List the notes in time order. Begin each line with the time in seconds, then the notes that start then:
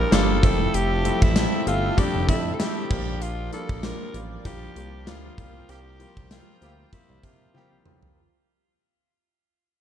Already playing: F3 G3 A#3 D4 F4 G4 A#4 D5 G5
0.11 G1 F3 G3 A#3 D4 F4 A4, snare, closed hi-hat, tambourine
0.42 F1 F3 G3 A3 C4 E4 A4 E5, kick, closed hi-hat
0.74 F1 G4, closed hi-hat
1.04 F3 G3 A3 C4 E4, closed hi-hat
1.22 A1 E4, kick
1.35 F3 G3 A3 C4 E4, snare, closed hi-hat, tambourine
1.66 G1 F3 G3 A3 C4 F4, closed hi-hat
1.97 F3 G3 A3 C4 D4 G4, kick, closed hi-hat
2.15 F1
2.28 F2 F3 G3 A3 C4 E4, kick, closed hi-hat
2.54 A4
2.59 F3 G3 A3 C4 E4 G4, snare, closed hi-hat, tambourine
2.90 A#1 F3 G3 A#3 D4 F4 D5, kick, crash
3.22 F4, closed hi-hat
3.52 F3 G3 A#3 D4 F4 A4, closed hi-hat
3.69 A#1, kick
3.83 F3 G3 A#3 D4 F4 A#4, snare, closed hi-hat, tambourine
4.14 A1 F3 G3 A#3 D4 F4, closed hi-hat
4.45 A#1 F3 G3 A#3 D4 F4 G4, kick, closed hi-hat
4.76 C2 F3 G3 A#3 D4 F4, closed hi-hat
5.07 D2 F3 G3 A#3 D4 F4, snare, closed hi-hat, tambourine
5.38 C2 F3 G3 A#3 C4 F4 A#4 C5 G5, kick, closed hi-hat
5.69 C2 A#3 C4 G4, closed hi-hat
5.99 F3 G3 A#3 C4 F4, closed hi-hat
6.17 C2, kick
6.31 F3 G3 A#3 C4 F4, snare, closed hi-hat, tambourine
6.61 D2 F3 G3 A#3 C4 F4 G4, closed hi-hat
6.92 F3 G3 A#3 C4 E4 F4, kick, closed hi-hat
7.10 C2
7.23 C3 F3 G3 A#3 C4 F4 G4, kick, closed hi-hat
7.54 F3 G3 A#3 C4 G4, high tom
7.72 C2
7.85 B1 F3 G3 A#3 C4 F4, mid tom
8.03 floor tom